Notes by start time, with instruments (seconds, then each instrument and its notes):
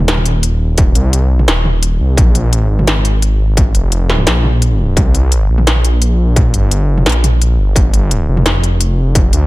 Already playing: detuned saw bass D#1
0.08 snare, closed hi-hat
0.17 mid tom
0.26 closed hi-hat
0.43 closed hi-hat
0.78 kick, closed hi-hat
0.95 detuned saw bass C2, closed hi-hat
1.13 closed hi-hat
1.39 mid tom
1.48 detuned saw bass D#1, snare, closed hi-hat
1.65 mid tom
1.83 closed hi-hat
2.00 detuned saw bass C2
2.17 detuned saw bass A#1, kick, closed hi-hat
2.35 closed hi-hat
2.53 closed hi-hat
2.70 detuned saw bass G#1
2.79 mid tom
2.87 snare, closed hi-hat
2.96 mid tom
3.05 closed hi-hat
3.22 closed hi-hat
3.57 kick, closed hi-hat
3.75 detuned saw bass F1, closed hi-hat
3.92 closed hi-hat
4.10 snare
4.18 mid tom
4.27 detuned saw bass A#1, snare, closed hi-hat
4.44 mid tom
4.62 closed hi-hat
4.97 detuned saw bass C2, kick, closed hi-hat
5.15 closed hi-hat
5.32 closed hi-hat
5.49 detuned saw bass A#1
5.58 mid tom
5.67 snare, closed hi-hat
5.76 mid tom
5.85 closed hi-hat
6.02 closed hi-hat
6.36 kick, closed hi-hat
6.54 detuned saw bass G1, closed hi-hat
6.71 closed hi-hat
6.98 mid tom
7.06 detuned saw bass A#1, snare, closed hi-hat
7.09 closed hi-hat
7.12 closed hi-hat
7.24 closed hi-hat, mid tom
7.42 closed hi-hat
7.58 detuned saw bass G1
7.76 detuned saw bass G1, kick, closed hi-hat
7.94 closed hi-hat
8.11 closed hi-hat
8.28 detuned saw bass F1
8.37 mid tom
8.46 snare, closed hi-hat
8.55 mid tom
8.64 closed hi-hat
8.80 closed hi-hat
9.15 kick, closed hi-hat
9.33 detuned saw bass D2, closed hi-hat